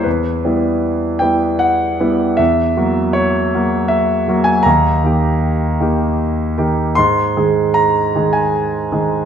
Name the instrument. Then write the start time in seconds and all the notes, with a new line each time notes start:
grand piano
0.04 E2 B4
0.45 G3 B3 E4
1.19 G3 B3 E4 G5
1.59 F#5
2.00 G3 B3 E4
2.37 E2 E5
2.77 F#3 A#3 F#4
3.13 C#5
3.55 F#3 A#3 F#4
3.88 E5
4.28 F#3 A#3 F#4
4.44 G#5
4.63 D#2 A#5
5.04 D#3 A#3 G4
5.81 D#3 A#3 G4
6.58 D#3 A#3 G4
6.95 G#2 C6
7.37 D#3 G#3 G#4
7.74 A#5
8.15 D#3 G#3 G#4
8.33 G#5
8.92 D#3 G#3 G#4